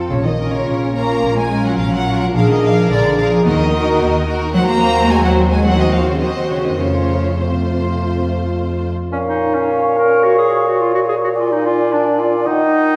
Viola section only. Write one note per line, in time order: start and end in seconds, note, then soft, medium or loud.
0.39 0.94 C#4 soft
0.39 0.94 F4 soft
0.96 1.50 C#4 soft
0.96 1.50 F4 soft
1.51 2.05 C#4 soft
1.51 2.05 F4 soft
2.06 2.34 C#4 soft
2.06 2.34 F4 soft
2.34 2.60 D4 soft
2.34 2.60 G#4 soft
2.61 3.16 D4 soft
2.61 3.16 G#4 soft
3.17 3.44 D4 soft
3.17 3.44 G#4 soft
3.44 3.71 D#4 medium
3.44 3.71 F#4 soft
3.72 4.26 D#4 soft
3.72 4.26 F#4 soft
4.28 4.54 D#4 medium
4.28 4.53 F#4 medium
4.54 5.61 C4 medium
4.54 5.61 F#4 soft
5.65 6.20 C4 medium
5.65 6.20 F#4 soft
6.22 6.78 C4 soft
6.22 6.78 F#4 soft
6.79 7.36 A3 soft
6.79 7.37 F4 soft
7.38 8.88 A3 soft
7.38 8.89 F4 soft